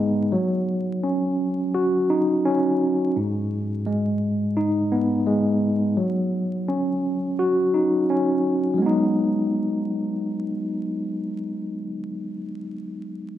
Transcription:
tine electric piano
Already playing: G#3 B3 D#4
0.32 F#3
1.04 C#4
1.74 F#4
2.10 D#4
2.45 C#4
3.16 G#2
3.86 G#3
4.57 D#4
4.92 B3
5.27 G#3
5.97 F#3
6.68 C#4
7.39 F#4
7.74 D#4
8.10 C#4
8.74 F#3
8.78 G#3
8.82 B3
8.86 D#4

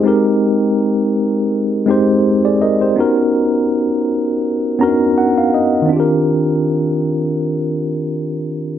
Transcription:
tine electric piano
Already playing: G#4
0.03 G#3 C4 D#4 G4
0.08 A#4
1.86 G#3 C4 D#4 G4
1.91 C5
2.45 G#4 D5
2.62 A#4 D#5
2.81 G4 C5
2.96 B3 C#4 D#4 F#4
3.00 A#4
4.79 B3 C#4 D4 F#4 A#5
4.83 A#4
4.88 D#4
5.18 F#5
5.38 F5
5.54 D#5
5.82 D#3 C4
5.89 D4 F4
5.96 G4 A#4

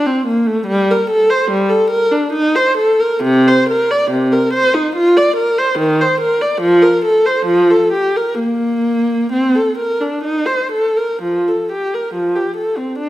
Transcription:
viola
0.06 C4
0.27 A#3
0.47 A3
0.67 G3
0.91 A#4
1.10 A4
1.30 C5
1.51 G3
1.69 A4
1.91 A#4
2.12 D4
2.33 D#4
2.56 C5
2.77 A4
3.00 A#4
3.24 C3
3.48 C5
3.69 A#4
3.91 D5
4.11 C3
4.32 A#4
4.54 C5
4.74 D#4
4.96 F4
5.17 D5
5.37 A#4
5.58 C5
5.79 D#3
6.01 C5
6.21 A#4
6.42 D5
6.61 F3
6.82 A#4
7.05 A4
7.26 C5
7.46 F3
7.70 A4
7.93 G4
8.17 A#4
8.39 A#3
9.33 C4
9.56 A4
9.78 A#4
10.01 D4
10.24 D#4
10.46 C5
10.72 A4
10.97 A#4
11.23 F3
11.48 A4
11.72 G4
11.94 A#4
12.15 F3
12.36 G4
12.57 A4
12.77 C4
12.99 D4

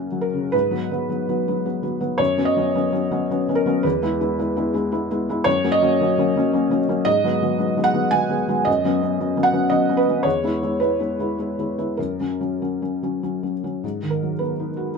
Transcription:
felt piano
Already playing: F#2 C#3 F#3 A#3 C#4 F#4 A#4
0.12 F#3
0.21 A#4
0.33 C#3
0.52 G#2 B4
0.71 F#3 B3
0.91 F#3 B3
1.09 F#3 B3
1.29 F#3 B3
1.48 F#3 B3
1.65 F#3 B3
1.83 F#3 B3
2.00 F#3 B3
2.18 F#2 C#5
2.37 F#3 B3 C#4
2.45 D#5
2.57 F#3 B3 C#4
2.75 F#3 B3 C#4
2.92 F#3 B3 C#4
3.11 F#3 B3 C#4
3.31 F#3 B3 C#4
3.49 F#3 B3 C#4
3.55 A#4
3.66 F#3 B3 C#4
3.83 E2 B4
4.02 G#3 B3 E4
4.21 G#3 B3 E4
4.39 G#3 B3 E4
4.56 G#3 B3 E4
4.73 G#3 B3 E4
4.92 G#3 B3 E4
5.11 G#3 B3 E4
5.29 G#3 B3 E4
5.44 F#2 C#5
5.64 F#3 A#3 C#4
5.72 D#5
5.82 F#3 A#3 C#4
6.01 F#3 A#3 C#4
6.18 F#3 A#3 C#4
6.36 F#3 A#3 C#4
6.53 F#3 A#3 C#4
6.70 F#3 A#3 C#4
6.89 F#3 A#3 C#4
7.05 G#2 D#5
7.24 F#3 G#3 B3
7.42 F#3 G#3 B3
7.58 F#3 G#3 B3
7.77 F#3 G#3 B3
7.84 F#5
7.94 F#3 G#3 B3
8.11 F#3 G#3 B3 G#5
8.29 F#3 G#3 B3
8.48 F#3 G#3 B3
8.65 F#2 D#5
8.84 F#3 B3 C#4
9.02 F#3 B3 C#4
9.20 F#3 B3 C#4
9.37 F#3 B3 C#4
9.43 F#5
9.53 F#3 B3 C#4
9.70 F#3 B3 C#4 D#5
9.89 F#3 B3 C#4
9.97 B4
10.08 F#3 B3 C#4
10.23 E2 C#5
10.43 G#3 B3 E4
10.63 G#3 B3 E4
10.80 G#3 B3 E4 B4
11.00 G#3 B3 E4
11.19 G#3 B3 E4
11.38 G#3 B3 E4
11.59 G#3 B3 E4
11.78 G#3 B3 E4
11.97 F#2 A#4
12.20 F#3 C#4
12.41 F#3 C#4
12.62 F#3 C#4
12.82 F#3 C#4
13.03 F#3 C#4
13.23 F#3 C#4
13.43 F#3 C#4
13.64 F#3 C#4
13.84 G#2
14.02 D#3
14.10 A#4
14.23 F#3
14.39 B3 B4
14.60 D#4
14.77 F#4

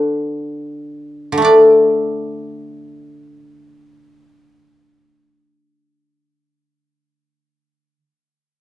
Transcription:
guzheng
Already playing: D3 A4 B4 D5 E5 F#5
1.32 D3
1.37 A3
1.42 D4 D5

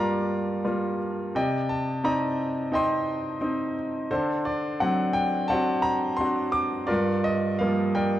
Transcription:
grand piano
Already playing: G2 G3 A#3 F4 A#4 D5 F5 A5 A#5
0.65 G3 A#3 F4
1.35 C3 D5 D#5 G5
1.69 A5
2.04 C4 D#4 D5 D#5 A#5
2.72 C4 D#4 D#5 G5 C6
3.41 C4 D#4
4.11 D3 D4 A4 C5
4.45 D5
4.80 F#3 C4 D4 F#5
5.13 G5
5.48 C4 D4 C5 F#5 A5
5.52 F#4
5.82 A#5
6.17 C4 D4 C6
6.21 F#4
6.52 D6
6.87 F4 A#4 D5
6.91 G2
7.24 D#5
7.59 F3 G3 A#3 F5
7.95 A#4 D5 G5

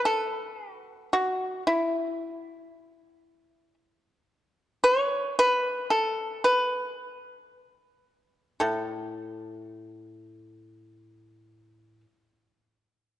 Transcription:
pipa
0.05 A4
0.74 F#4
1.13 F#4
1.67 E4
4.84 C#5
5.39 B4
5.90 A4
6.44 B4
8.60 A2 A4

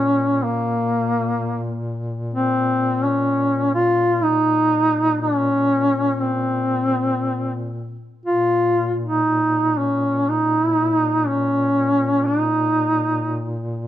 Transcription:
duduk
Already playing: A#2 C#4
0.44 A#3
2.34 C4
3.05 C#4
3.74 F4
4.23 D#4
5.21 C#4
6.22 C4
8.25 A#2 F4
9.04 D#4
9.77 C#4
10.29 D#4
11.28 C#4
12.26 D#4

